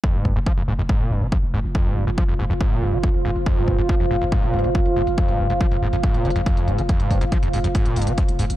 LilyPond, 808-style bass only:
\new Staff \with { instrumentName = "808-style bass" } { \clef bass \time 4/4 \key f \minor \tempo 4 = 140 r16 f,,16 f,,16 f,,16 r16 f,,16 f,,16 f,,16 r16 f,,16 f,,16 f,,16 r16 f,,16 f,,16 f,,16 | r16 f,,16 f,,16 f,,16 r16 f,,16 f,,16 f,,16 r16 f,,16 f,,16 f,,16 r16 f,,16 f,,16 f,,16 | r16 f,,16 f,,16 f,,16 r16 f,,16 f,,16 f,,16 r16 f,,16 f,,16 f,,16 r16 f,,16 f,,16 f,,16 | r16 f,,16 f,,16 f,,16 r16 f,,16 f,,16 f,,16 r16 f,,16 f,,16 f,,16 r16 f,,16 f,,16 f,,16 |
r16 f,,16 f,,16 f,,16 r16 f,,16 f,,16 f,,16 r16 f,,16 f,,16 f,,16 r16 f,,16 f,,16 f,,16 | }